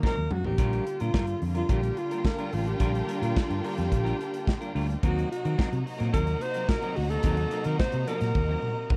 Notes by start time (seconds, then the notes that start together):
Already playing: C3 F#3 A#3 D#4 A#5
0.03 F#3 C4 D#4 A#4, kick, snare
0.17 D#2, muted clean electric guitar stroke
0.31 F#2 F#4, muted clean electric guitar stroke, mid tom
0.44 A1 F#3 C4 D#4 G4 A#4, floor tom
0.57 A#1 D3 G3 A#3 D4 F4 A#4, kick, closed hi-hat
0.73 closed hi-hat
0.87 closed hi-hat
1.00 A#2 G3 D4 F4 A#4, closed hi-hat
1.14 G2 G3 D4 F4 A#4, kick, snare
1.27 muted clean electric guitar stroke, closed hi-hat
1.42 F2, muted clean electric guitar stroke, open hi-hat
1.55 G3 D4 F4 A#4, closed hi-hat
1.68 A#1 G3 D4 F4 G4 A#4 G5, kick, closed hi-hat
1.83 muted clean electric guitar stroke, closed hi-hat
1.97 F4, muted clean electric guitar stroke, closed hi-hat
2.11 G3 D4 F4 A#4, closed hi-hat
2.25 A#4, muted clean electric guitar stroke, kick, snare
2.38 G3 D4 F4 A#4, closed hi-hat
2.53 A1 F4, muted clean electric guitar stroke, open hi-hat
2.66 G4, muted clean electric guitar stroke, closed hi-hat
2.80 A#1 G3 D4 F4 A#4, kick, closed hi-hat
2.93 muted clean electric guitar stroke, closed hi-hat
3.07 G3 D4 F4 A#4, closed hi-hat
3.21 A#2 G3 D4 F4 A#4, closed hi-hat
3.37 kick, snare
3.50 G2, muted clean electric guitar stroke, closed hi-hat
3.64 G3 D4 F4 G4 A#4, open hi-hat
3.77 F2, muted clean electric guitar stroke, snare, closed hi-hat
3.91 A#1, muted clean electric guitar stroke, kick, closed hi-hat
4.04 G3 D4 F4 A#4, closed hi-hat
4.18 muted clean electric guitar stroke, closed hi-hat
4.33 muted clean electric guitar stroke, closed hi-hat
4.47 muted clean electric guitar stroke, kick, snare
4.61 G3 D4 F4 A#4, closed hi-hat
4.75 D2 G3 D4 F4 A#4, open hi-hat
4.89 muted clean electric guitar stroke, closed hi-hat
5.02 D#2 C3 F#3 A#3 C4 D#4 F#4 A#4 D#5 A#5, kick, closed hi-hat
5.19 closed hi-hat
5.31 F#4, muted clean electric guitar stroke, closed hi-hat
5.45 D#3 F#3 C4 D#4 A#4, closed hi-hat
5.58 F#3 C4 D#4 A#4, kick, snare
5.72 C3, muted clean electric guitar stroke, closed hi-hat
5.86 muted clean electric guitar stroke, open hi-hat
5.98 A#2 F#3 C4 D#4 A#4, snare, closed hi-hat
6.13 D#2 F#3 C4 D#4 A#4, kick, closed hi-hat
6.26 muted clean electric guitar stroke, closed hi-hat
6.41 C5, muted clean electric guitar stroke, closed hi-hat
6.54 F#3 C4 D#4 A#4, closed hi-hat
6.68 A#4, muted clean electric guitar stroke, kick, snare
6.82 F#3 C4 D#4 A#4, closed hi-hat
6.96 D2 F#4, open hi-hat
7.10 A4, muted clean electric guitar stroke, closed hi-hat
7.23 D#2 F#3 C4 D#4 A#4, kick, closed hi-hat
7.37 muted clean electric guitar stroke, closed hi-hat
7.51 F#3 C4 D#4 A#4, closed hi-hat
7.64 D#3 F#3 C4 D#4 A#4, closed hi-hat
7.79 C5, kick, snare
7.92 C3, muted clean electric guitar stroke, closed hi-hat
8.07 F#3 C4 D#4 A#4, closed hi-hat
8.21 A#2, muted clean electric guitar stroke, snare, closed hi-hat
8.35 D#2, muted clean electric guitar stroke, kick, high tom
8.49 F#3 C4 D#4 A#4
8.62 mid tom
8.77 muted clean electric guitar stroke
8.90 muted clean electric guitar stroke, kick, mid tom